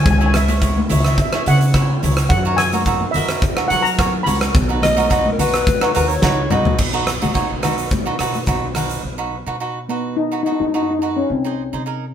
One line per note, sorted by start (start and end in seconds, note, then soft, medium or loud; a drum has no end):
0.04 0.80 C#2 loud
0.04 0.10 G#5 medium
0.04 kick loud
0.04 closed hi-hat medium
0.04 low conga medium
0.11 0.17 G#5 medium
0.18 0.37 E4 medium
0.18 0.37 G#4 medium
0.18 0.38 C#5 medium
0.18 0.25 G#5 medium
0.26 0.32 G#5 medium
0.34 0.92 E5 medium
0.34 cross-stick medium
0.34 closed hi-hat medium
0.34 low conga medium
0.48 0.57 E4 medium
0.48 0.57 G#4 medium
0.48 0.57 C#5 medium
0.48 closed hi-hat medium
0.48 high conga medium
0.61 0.79 E4 medium
0.61 0.79 G#4 medium
0.61 0.80 C#5 medium
0.61 kick medium
0.61 closed hi-hat medium
0.77 high conga medium
0.89 1.15 C#2 medium
0.89 1.15 E4 medium
0.89 1.15 G#4 medium
0.89 1.16 C#5 medium
0.89 0.99 E5 medium
0.89 closed hi-hat medium
0.89 low conga medium
1.00 1.07 E5 medium
1.05 1.12 E5 medium
1.05 cross-stick medium
1.05 closed hi-hat medium
1.14 1.21 E5 medium
1.18 kick loud
1.18 closed hi-hat medium
1.22 1.28 E5 medium
1.29 1.35 E5 medium
1.29 cross-stick medium
1.33 1.41 E4 medium
1.33 1.41 G#4 medium
1.33 1.41 C#5 medium
1.33 1.43 E5 medium
1.46 1.96 C#3 medium
1.46 1.64 E4 medium
1.46 1.64 G#4 medium
1.46 1.64 C#5 medium
1.46 1.99 F#5 medium
1.46 closed hi-hat medium
1.61 closed hi-hat medium
1.74 1.92 E4 medium
1.74 1.92 G#4 medium
1.74 1.92 C#5 medium
1.74 kick medium
1.74 cross-stick medium
1.74 closed hi-hat medium
2.03 2.27 C#2 medium
2.03 2.28 E4 medium
2.03 2.28 G#4 medium
2.03 2.28 C#5 medium
2.03 closed hi-hat medium
2.03 low conga medium
2.17 cross-stick medium
2.17 closed hi-hat medium
2.29 3.04 F#2 loud
2.29 2.42 F#5 loud
2.29 kick loud
2.29 closed hi-hat medium
2.29 low conga medium
2.45 2.61 F#4 medium
2.45 2.62 A#4 medium
2.45 2.62 C#5 medium
2.57 3.10 G#5 loud
2.57 cross-stick medium
2.57 closed hi-hat medium
2.57 low conga medium
2.72 2.81 F#4 medium
2.72 2.81 A#4 medium
2.72 2.81 C#5 medium
2.72 closed hi-hat medium
2.72 high conga medium
2.86 3.04 F#4 medium
2.86 3.04 A#4 medium
2.86 3.04 E5 medium
2.86 kick medium
2.86 closed hi-hat medium
3.01 high conga medium
3.11 3.39 F#2 medium
3.11 3.40 D#5 medium
3.11 3.71 E5 medium
3.11 closed hi-hat medium
3.11 low conga medium
3.16 3.40 F#4 medium
3.16 3.40 A#4 medium
3.29 cross-stick medium
3.29 closed hi-hat medium
3.42 kick loud
3.42 closed hi-hat medium
3.57 3.65 F#4 medium
3.57 3.65 A#4 medium
3.57 3.66 E5 medium
3.57 cross-stick medium
3.68 4.20 F#3 medium
3.68 3.88 F#4 medium
3.68 3.88 A#4 medium
3.68 3.88 C#5 medium
3.68 3.84 F#5 loud
3.68 closed hi-hat medium
3.82 4.22 A#5 loud
3.82 closed hi-hat medium
3.98 4.16 F#4 medium
3.98 4.16 A#4 medium
3.98 4.16 C#5 medium
3.98 kick medium
3.98 cross-stick medium
3.98 closed hi-hat medium
4.23 4.51 C#2 medium
4.23 4.52 F#4 medium
4.23 4.52 A#4 medium
4.23 4.52 C#5 medium
4.23 6.45 B5 loud
4.23 closed hi-hat loud
4.23 low conga medium
4.41 cross-stick medium
4.41 closed hi-hat medium
4.55 5.28 B1 loud
4.55 kick loud
4.55 closed hi-hat medium
4.55 low conga medium
4.69 4.86 D#4 medium
4.69 4.86 F#4 medium
4.69 4.86 B4 medium
4.82 5.28 D#5 loud
4.82 cross-stick medium
4.82 closed hi-hat medium
4.82 high conga medium
4.82 low conga medium
4.97 5.05 D#4 medium
4.97 5.05 F#4 medium
4.97 5.06 A#4 loud
4.97 closed hi-hat medium
4.97 high conga medium
5.10 5.28 D#4 medium
5.10 5.28 F#4 medium
5.10 5.28 B4 medium
5.10 kick medium
5.10 closed hi-hat medium
5.26 high conga medium
5.32 5.41 A#4 medium
5.39 5.63 B1 medium
5.39 5.64 D#4 medium
5.39 5.65 F#4 medium
5.39 5.93 B4 loud
5.39 5.65 B4 medium
5.39 closed hi-hat medium
5.39 low conga medium
5.54 cross-stick medium
5.54 closed hi-hat medium
5.67 kick loud
5.67 closed hi-hat medium
5.67 high conga medium
5.81 5.89 D#4 medium
5.81 5.90 F#4 medium
5.81 5.90 C#5 medium
5.81 cross-stick medium
5.94 6.21 D#2 medium
5.94 6.12 D#4 medium
5.94 6.12 F#4 medium
5.94 6.13 A#4 medium
5.94 6.10 B4 medium
5.94 closed hi-hat medium
6.08 6.52 C#5 medium
6.08 closed hi-hat medium
6.22 6.48 C#2 medium
6.22 6.40 D#4 medium
6.22 6.40 F#4 medium
6.22 6.41 B4 medium
6.22 kick medium
6.22 snare medium
6.50 6.77 B1 medium
6.50 6.76 D#4 medium
6.50 6.77 F#4 medium
6.50 6.77 B4 medium
6.50 6.79 D#5 medium
6.50 mid tom loud
6.50 low conga medium
6.65 floor tom medium
6.65 high conga medium
6.78 7.17 B1 medium
6.78 kick loud
6.78 crash loud
6.93 7.10 D#4 medium
6.93 7.10 F#4 medium
6.93 7.10 B4 medium
7.07 cross-stick medium
7.07 closed hi-hat medium
7.21 7.34 B1 medium
7.21 7.30 D#4 medium
7.21 7.30 F#4 medium
7.21 7.30 G#4 medium
7.21 closed hi-hat medium
7.21 high conga medium
7.21 low conga medium
7.34 7.52 D#4 medium
7.34 7.52 F#4 medium
7.34 7.52 C#5 medium
7.34 kick medium
7.34 closed hi-hat medium
7.52 8.12 B1 medium
7.63 7.89 D#4 medium
7.63 7.89 F#4 medium
7.63 7.89 B4 medium
7.63 cross-stick medium
7.63 closed hi-hat medium
7.63 high conga medium
7.63 low conga medium
7.78 closed hi-hat medium
7.91 kick medium
7.91 closed hi-hat medium
7.91 high conga medium
8.06 8.14 D#4 medium
8.06 8.14 F#4 medium
8.06 8.15 B4 medium
8.19 8.45 B2 medium
8.19 8.37 D#4 medium
8.19 8.38 F#4 medium
8.19 8.38 B4 medium
8.19 cross-stick medium
8.19 closed hi-hat medium
8.34 closed hi-hat medium
8.34 high conga medium
8.46 8.97 B1 medium
8.46 8.65 D#4 medium
8.46 8.65 F#4 medium
8.46 8.66 B4 medium
8.46 kick medium
8.46 closed hi-hat medium
8.75 9.01 D#4 medium
8.75 9.01 F#4 medium
8.75 9.02 B4 medium
8.75 cross-stick medium
8.75 closed hi-hat medium
8.75 low conga medium
8.89 closed hi-hat medium
9.03 9.42 B1 medium
9.18 9.35 D#4 medium
9.18 9.35 F#4 medium
9.18 9.35 B4 medium
9.46 10.46 B2 medium
9.46 9.55 D#4 medium
9.46 9.55 F#4 medium
9.46 9.56 B4 medium
9.60 9.78 D#4 medium
9.60 9.78 F#4 medium
9.60 9.79 B4 medium
9.89 10.18 B3 medium
9.89 10.15 D#4 medium
9.89 10.15 F#4 soft
9.89 10.15 B4 medium
10.17 10.42 D#4 medium
10.32 10.40 D#4 medium
10.32 10.40 F#4 medium
10.32 10.41 B4 medium
10.43 10.51 D#4 medium
10.43 10.63 D#4 medium
10.43 10.64 F#4 medium
10.47 10.64 B4 medium
10.52 10.59 D#4 medium
10.60 11.22 F#2 medium
10.60 10.67 D#4 medium
10.68 10.73 D#4 medium
10.74 10.91 D#4 medium
10.74 10.82 D#4 medium
10.74 10.92 F#4 medium
10.74 10.92 B4 medium
10.83 10.89 D#4 medium
10.91 10.98 D#4 medium
10.99 11.07 D#4 medium
10.99 11.28 D#4 medium
10.99 11.28 F#4 medium
10.99 11.28 B4 medium
11.17 11.29 C#4 medium
11.30 11.68 C2 medium
11.30 12.14 C4 medium
11.44 11.61 D#4 medium
11.44 11.62 G#4 medium
11.44 11.62 C5 medium
11.73 12.14 C3 medium
11.73 11.81 D#4 medium
11.73 11.82 G#4 soft
11.73 11.82 C5 medium
11.86 12.04 D#4 medium
11.86 12.04 G#4 medium
11.86 12.05 A#4 medium